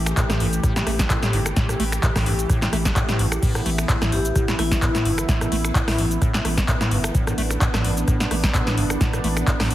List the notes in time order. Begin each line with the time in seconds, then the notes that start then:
Already playing: A1 E3 A3 G4
0.06 finger snap, cross-stick, closed hi-hat, shaker
0.17 A2, kick, clap, closed hi-hat, shaker
0.30 A1 A2, cross-stick, snare, closed hi-hat, shaker
0.40 A1 G2, open hi-hat
0.53 closed hi-hat, shaker
0.63 A2, kick, cross-stick, closed hi-hat, shaker
0.76 A2, snare, closed hi-hat, shaker
0.87 A1 A3, cross-stick, open hi-hat
0.99 kick, snare, closed hi-hat, shaker
1.10 A2, kick, cross-stick, clap, closed hi-hat, shaker
1.23 A2, snare, closed hi-hat, shaker
1.33 G1 G2, open hi-hat
1.46 finger snap, cross-stick, closed hi-hat, shaker
1.56 A2, kick, snare, closed hi-hat, shaker
1.69 A2, cross-stick, closed hi-hat, shaker
1.80 A1 A3, open hi-hat
1.92 finger snap, cross-stick, closed hi-hat, shaker
2.03 A2, kick, clap, closed hi-hat, shaker
2.16 A1 A2, kick, cross-stick, snare, open hi-hat, shaker
2.26 A1 G2, open hi-hat
2.39 closed hi-hat, shaker
2.49 A2, kick, cross-stick, closed hi-hat, shaker
2.62 A2, snare, clap, closed hi-hat, shaker
2.73 A1 A3, cross-stick, open hi-hat
2.85 kick, snare, closed hi-hat, shaker
2.96 A2, kick, cross-stick, clap, closed hi-hat, shaker
3.09 A2, snare, closed hi-hat, shaker
3.19 A1 G2, open hi-hat
3.32 finger snap, cross-stick, closed hi-hat, shaker
3.43 A2 B3 E4, kick, closed hi-hat, crash, shaker
3.55 A2, cross-stick, closed hi-hat, shaker
3.66 A1 A3, open hi-hat
3.78 finger snap, cross-stick, closed hi-hat, shaker
3.89 A2, kick, clap, closed hi-hat, shaker
4.02 A1 A2, cross-stick, snare, closed hi-hat, shaker
4.12 A1 G2 G4, open hi-hat
4.25 closed hi-hat, shaker
4.36 A2, kick, cross-stick, closed hi-hat, shaker
4.48 A2, snare, closed hi-hat, shaker
4.59 A1 A3 E4, cross-stick, open hi-hat
4.71 kick, snare, closed hi-hat, shaker
4.82 A2, kick, cross-stick, clap, closed hi-hat, shaker
4.95 A2, snare, closed hi-hat, shaker
5.05 G1 G2, open hi-hat
5.18 finger snap, cross-stick, closed hi-hat, shaker
5.29 A2, kick, snare, closed hi-hat, shaker
5.41 A2, cross-stick, closed hi-hat, shaker
5.52 A1 A3, open hi-hat
5.65 finger snap, cross-stick, closed hi-hat, shaker
5.75 A2, kick, clap, closed hi-hat, shaker
5.88 A1 A2, cross-stick, snare, open hi-hat, shaker
5.98 A1 G2, open hi-hat
6.11 closed hi-hat, shaker
6.22 A2, kick, cross-stick, closed hi-hat, shaker
6.34 A2, snare, clap, closed hi-hat, shaker
6.45 A1 A3, cross-stick, open hi-hat
6.58 kick, snare, closed hi-hat, shaker
6.68 A2, kick, cross-stick, clap, closed hi-hat, shaker
6.81 A2, snare, closed hi-hat, shaker
6.91 G1 G2, open hi-hat
7.04 finger snap, cross-stick, closed hi-hat, shaker
7.15 A2 D4, kick, closed hi-hat, shaker
7.27 A2, cross-stick, closed hi-hat, shaker
7.38 A1 A3, open hi-hat
7.51 finger snap, cross-stick, closed hi-hat, shaker
7.61 A2, kick, clap, closed hi-hat, shaker
7.74 A1 A2, cross-stick, snare, closed hi-hat, shaker
7.84 A1 G2, open hi-hat
7.97 closed hi-hat, shaker
8.08 A2, kick, cross-stick, closed hi-hat, shaker
8.20 A2, snare, closed hi-hat, shaker
8.31 A1 A3, cross-stick, open hi-hat
8.44 kick, snare, closed hi-hat, shaker
8.54 A2, kick, cross-stick, clap, closed hi-hat, shaker
8.67 A2, snare, closed hi-hat, shaker
8.77 G1 G2, open hi-hat
8.90 finger snap, cross-stick, closed hi-hat, shaker
9.01 A2, kick, snare, closed hi-hat, shaker
9.13 A2, cross-stick, closed hi-hat, shaker
9.24 A1 A3, open hi-hat
9.37 finger snap, cross-stick, closed hi-hat, shaker
9.47 A2, kick, clap, closed hi-hat, shaker
9.60 A1 A2, cross-stick, snare, open hi-hat, shaker
9.70 A1 G2, open hi-hat